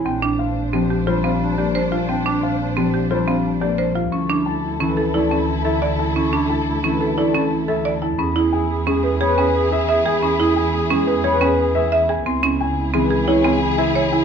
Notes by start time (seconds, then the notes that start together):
Already playing: C4 E4 G#5
0.05 A#1 C4 D4 C5 G5
0.22 D4
0.39 C4 D4 F5
0.56 D4
0.73 F3 C4 D4 G4
0.90 D4 G4
1.07 G3 D4 F4 C5
1.24 C4 D4 F5
1.42 D4
1.58 A#3 D4 G4 D5
1.75 D4 C5
1.92 D4 F4 F5
2.09 C4 D4 G5
2.26 D4
2.43 C4 D4 F5
2.60 D4
2.77 F3 C4 D4 G4
2.94 D4 G4
3.11 G3 D4 F4 C5
3.27 C4 D4 F5
3.45 D4
3.61 A#3 D4 G4 D5
3.78 D4 C5
3.95 F4 F5
4.12 D2 C#4 E4 A4 C#6
4.30 D4 E4
4.46 D4 E4 A5
4.64 E4
4.80 E3 C#4 E4 A4
4.97 E4 A4
5.14 A3 E4 D5
5.31 C#4 E4 A5
5.48 E4
5.65 C#4 E4 A4 E5
5.82 E4 D5
5.99 E4 A5
6.16 C#4 E4 C#6
6.33 D4 E4
6.50 D4 E4 A5
6.67 E4
6.83 E3 C#4 E4 A4
7.01 E4 A4
7.18 A3 E4 D5
7.34 C#4 E4 A5
7.52 E4
7.68 C#4 E4 A4 E5
7.85 E4 D5
8.02 E4 A5
8.18 E2 C#4 E4 G#4 B5
8.36 E4 G#4
8.52 E4 G#4 G#5
8.70 G#4
8.87 G#3 C#4 G#4
9.04 G#4 B4
9.21 B3 G#4 C#5
9.38 C#4 G#4 G#5
9.55 G#4
9.72 C#4 G#4 B4 E5
9.89 G#4 E5
10.06 G#4 G#5
10.22 C#4 G#4 B5
10.40 E4 G#4
10.56 E4 G#4 G#5
10.74 G#4
10.90 G#3 C#4 G#4
11.07 G#4 B4
11.24 B3 G#4 C#5
11.41 C#4 G#4 G#5
11.59 G#4
11.75 C#4 G#4 B4 E5
11.92 G#4 E5
12.09 G#4 G#5
12.26 C#2 C4 E4 G#4 C6
12.43 C#4 E4
12.60 C#4 E4 G#5
12.77 E4
12.93 E3 C4 E4 G#4
13.10 E4 G#4
13.28 G#3 E4 C#5
13.44 C4 E4 G#5
13.61 E4
13.78 C4 E4 G#4 E5
13.95 E4 C#5
14.12 E4 G#5